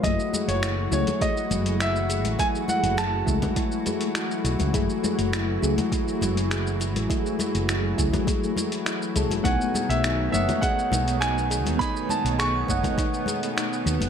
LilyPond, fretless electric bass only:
\new Staff \with { instrumentName = "Fretless electric bass" } { \clef bass \time 4/4 \key fis \dorian \tempo 4 = 102 fis,,16 r8 fis,,8. cis,16 r8. fis,,4~ fis,,16 a,,16 | r8. fis,,8. cis,16 r4. r16 b,,16 cis,16 | fis,,16 r8 fis,,8. cis,16 r8. fis,,4~ fis,,16 a,,16 | r8. fis,,8. cis,16 r4. r16 cis,16 e,,16 |
b,,16 r8 b,,8. fis,,16 r8. b,,4~ b,,16 dis,16 | r8. b,,8. fis,,16 r4. r16 dis,16 fis,,16 | }